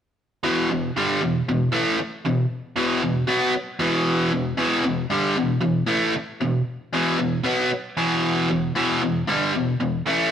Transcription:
0.44 0.68 E2 medium
0.44 0.68 B2 loud
0.44 0.69 E3 loud
0.70 0.90 E2 medium
0.70 0.90 B2 medium
0.97 1.21 G2 medium
0.97 1.21 D3 medium
0.97 1.21 G3 medium
1.22 1.42 E2 medium
1.22 1.42 B2 medium
1.49 1.68 E2 medium
1.49 1.68 B2 medium
1.72 1.97 A2 medium
1.72 1.98 E3 medium
1.72 1.98 A3 medium
2.00 muted overdriven electric guitar stroke medium
2.26 2.45 E2 medium
2.26 2.46 B2 medium
2.76 3.01 E2 medium
2.76 3.02 B2 loud
2.76 3.02 E3 loud
3.02 3.23 E2 medium
3.02 3.23 B2 medium
3.27 3.53 B2 medium
3.27 3.53 F#3 medium
3.27 3.53 B3 loud
3.79 4.31 E2 medium
3.79 4.31 B2 loud
3.79 4.31 E3 medium
4.32 4.53 E2 medium
4.32 4.53 B2 medium
4.57 4.83 E2 loud
4.57 4.83 B2 loud
4.57 4.84 E3 loud
4.85 5.05 E2 medium
4.85 5.05 B2 medium
5.10 5.35 G2 medium
5.10 5.36 D3 loud
5.10 5.36 G3 loud
5.37 5.57 E2 medium
5.37 5.58 B2 medium
5.61 5.82 E2 medium
5.61 5.83 B2 medium
5.86 6.13 A2 medium
5.86 6.13 E3 loud
5.86 6.13 A3 loud
6.15 muted overdriven electric guitar stroke medium
6.41 6.62 E2 medium
6.41 6.61 B2 medium
6.93 7.17 E2 loud
6.93 7.18 B2 loud
6.93 7.19 E3 loud
7.18 7.39 E2 medium
7.18 7.40 B2 medium
7.44 7.69 B2 medium
7.44 7.70 F#3 medium
7.44 7.70 B3 loud
7.97 8.48 E2 medium
7.97 8.48 B2 medium
7.97 8.49 E3 loud
8.49 8.70 E2 medium
8.49 8.70 B2 medium
8.75 9.00 E2 loud
8.75 9.01 B2 loud
8.75 9.01 E3 loud
9.02 9.22 E2 medium
9.02 9.23 B2 medium
9.27 9.53 G2 medium
9.27 9.53 D3 medium
9.27 9.53 G3 loud
9.54 9.74 E2 medium
9.54 9.75 B2 medium
9.80 10.01 E2 medium
9.80 10.01 B2 medium
10.07 10.31 A2 medium
10.07 10.31 E3 medium
10.07 10.31 A3 medium

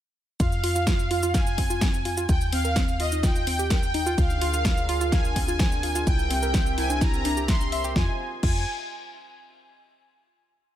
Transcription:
0.40 2.27 F2 medium
0.40 0.47 F4 medium
0.40 1.37 F5 loud
0.40 kick loud
0.40 ride medium
0.40 shaker medium
0.52 shaker soft
0.64 0.71 F4 loud
0.64 open hi-hat loud
0.75 0.82 F4 medium
0.75 shaker medium
0.87 0.98 F4 medium
0.87 kick loud
0.87 snare loud
0.87 ride medium
0.87 shaker medium
0.99 shaker soft
1.11 1.18 F4 loud
1.11 open hi-hat medium
1.23 1.30 F4 loud
1.23 shaker medium
1.34 1.39 F5 loud
1.34 2.25 G#5 loud
1.34 kick loud
1.34 snare medium
1.34 ride medium
1.34 shaker medium
1.47 shaker soft
1.58 1.65 C4 medium
1.58 kick medium
1.58 open hi-hat loud
1.70 1.77 F4 loud
1.70 shaker medium
1.81 1.89 C4 medium
1.81 kick loud
1.81 snare loud
1.81 ride medium
1.81 shaker medium
1.94 shaker soft
2.05 2.09 F4 medium
2.05 open hi-hat medium
2.17 2.24 F4 loud
2.17 shaker medium
2.29 4.16 D#2 medium
2.29 2.33 F4 medium
2.29 2.40 G5 loud
2.29 kick loud
2.29 ride medium
2.29 shaker medium
2.41 shaker soft
2.52 2.60 C4 medium
2.52 3.01 F5 loud
2.52 open hi-hat loud
2.65 2.69 A#4 medium
2.65 shaker medium
2.76 2.83 C4 medium
2.76 kick loud
2.76 snare loud
2.76 ride medium
2.76 shaker medium
2.88 shaker soft
3.00 3.04 F4 medium
3.00 3.11 D#5 medium
3.00 open hi-hat loud
3.12 3.16 D#4 medium
3.12 shaker medium
3.23 3.28 F4 medium
3.23 3.70 G5 loud
3.23 kick loud
3.23 snare medium
3.23 ride medium
3.23 shaker medium
3.35 shaker soft
3.47 3.54 C4 medium
3.47 open hi-hat loud
3.59 3.69 G4 medium
3.59 shaker medium
3.70 3.78 A#4 medium
3.70 4.15 G5 loud
3.70 kick loud
3.70 snare loud
3.70 ride medium
3.70 shaker medium
3.83 shaker soft
3.94 3.98 D#4 loud
3.94 open hi-hat medium
4.06 4.10 F4 loud
4.06 shaker medium
4.18 6.05 D2 medium
4.18 6.05 D4 medium
4.18 4.25 F4 medium
4.18 6.05 G#4 medium
4.18 6.05 A#4 medium
4.18 5.15 F5 loud
4.18 kick loud
4.18 ride medium
4.18 shaker medium
4.30 shaker soft
4.41 4.49 F4 loud
4.41 open hi-hat loud
4.54 4.60 F4 medium
4.54 shaker medium
4.65 4.76 F4 medium
4.65 kick loud
4.65 snare loud
4.65 ride medium
4.65 shaker medium
4.77 shaker soft
4.89 4.96 F4 loud
4.89 open hi-hat loud
5.01 5.08 F4 loud
5.01 shaker medium
5.12 5.17 F5 loud
5.12 6.03 G#5 loud
5.12 kick loud
5.12 snare medium
5.12 ride medium
5.12 shaker medium
5.25 shaker soft
5.36 5.43 C4 medium
5.36 kick medium
5.36 open hi-hat loud
5.48 5.55 F4 loud
5.48 shaker medium
5.59 5.67 C4 medium
5.59 kick loud
5.59 snare loud
5.59 ride medium
5.59 shaker medium
5.72 shaker soft
5.83 5.87 F4 medium
5.83 open hi-hat loud
5.95 6.02 F4 loud
5.95 shaker medium
6.07 7.94 C2 medium
6.07 7.94 C4 medium
6.07 6.11 E4 medium
6.07 7.94 G4 medium
6.07 7.94 A#4 medium
6.07 7.94 E5 medium
6.07 6.29 G5 loud
6.07 kick loud
6.07 ride medium
6.07 shaker medium
6.19 shaker soft
6.30 6.37 C4 medium
6.30 6.79 G5 loud
6.30 open hi-hat loud
6.42 6.47 A#4 medium
6.42 shaker medium
6.54 6.61 C4 medium
6.54 kick loud
6.54 snare loud
6.54 ride medium
6.54 shaker medium
6.66 shaker soft
6.78 6.82 E4 medium
6.78 7.02 G#5 loud
6.78 open hi-hat loud
6.90 6.94 D4 medium
6.90 shaker medium
7.01 7.06 E4 medium
7.01 7.45 A#5 loud
7.01 kick loud
7.01 snare medium
7.01 ride medium
7.01 shaker medium
7.14 shaker soft
7.25 7.32 D4 medium
7.25 open hi-hat loud
7.37 7.41 G4 medium
7.37 shaker medium
7.48 7.53 E5 loud
7.48 7.82 C6 loud
7.48 kick loud
7.48 snare loud
7.48 ride medium
7.48 shaker medium
7.61 shaker soft
7.72 7.79 E5 loud
7.72 open hi-hat loud
7.84 7.91 G4 loud
7.84 shaker medium
7.96 8.09 F2 loud
7.96 8.18 F4 medium
7.96 8.09 F4 loud
7.96 8.18 C5 medium
7.96 8.18 D#5 medium
7.96 8.09 G#5 medium
7.96 8.18 G#5 medium
7.96 kick loud
7.96 snare medium
8.43 8.65 F2 loud
8.43 8.65 F4 medium
8.43 8.65 G#5 medium
8.43 kick loud
8.43 crash medium

